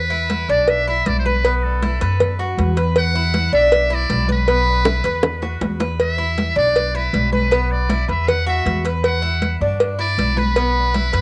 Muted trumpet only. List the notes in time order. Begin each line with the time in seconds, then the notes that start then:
Already playing: B4
0.50 D5
0.69 E5
0.89 E5
1.07 D5
1.19 C5
1.26 B4
1.57 B4
1.63 A4
2.99 F#5
3.55 E5
3.95 D5
4.32 B4
6.01 E5
6.58 D5
6.96 B4
7.33 B4
7.72 D5
8.11 E5
8.29 F#5
8.49 E5
9.05 F#5
10.01 D5
10.39 B4